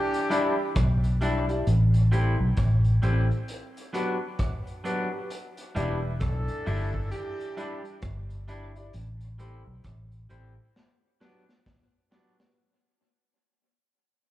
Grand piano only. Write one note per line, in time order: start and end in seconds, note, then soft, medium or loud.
0.30 0.53 E4 loud
0.30 0.53 G4 medium
0.30 0.54 D5 loud
1.22 1.44 E4 medium
1.22 1.44 G4 medium
1.22 1.45 D5 loud
1.49 1.63 E4 medium
1.49 1.64 G4 medium
1.49 1.64 D5 medium
2.12 2.35 G4 loud
2.12 2.35 A4 medium
2.12 2.35 C5 medium
3.03 3.25 G4 medium
3.03 3.26 A4 medium
3.03 3.26 C5 loud
3.94 4.16 F#4 loud
3.94 4.17 G4 medium
3.94 4.17 B4 loud
4.84 5.07 F#4 medium
4.84 5.08 G4 medium
4.84 5.08 B4 loud
5.12 5.27 F#4 medium
5.12 5.27 G4 medium
5.12 5.28 B4 medium
5.75 5.98 E4 loud
5.75 5.98 G4 medium
5.75 5.99 D5 loud
6.66 6.89 E4 loud
6.66 6.89 G4 medium
6.66 6.90 D5 loud
7.57 7.80 E4 loud
7.57 7.80 G4 medium
7.57 7.80 D5 loud
8.48 8.71 E4 medium
8.48 8.71 G4 medium
8.48 8.71 D5 loud
8.76 8.90 E4 medium
8.76 8.91 G4 medium
8.76 8.91 D5 medium
9.39 9.62 G4 medium
9.39 9.62 A4 medium
9.39 9.62 C5 loud
10.29 10.52 G4 medium
10.29 10.53 A4 medium
10.29 10.53 C5 loud
11.20 11.43 F#4 medium
11.20 11.43 G4 loud
11.20 11.44 B4 loud
12.11 12.34 F#4 medium
12.11 12.34 G4 medium
12.11 12.35 B4 medium
12.39 12.53 F#4 medium
12.39 12.54 G4 medium
12.39 12.54 B4 medium